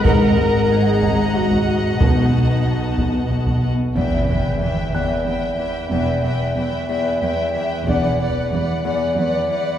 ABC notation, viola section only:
X:1
M:3/4
L:1/8
Q:1/4=92
K:B
V:1 name="Viola section"
A2 G2 F2 | D4 z2 | [K:Em] B B B B B B | B B B B B B |
B B B B B B |]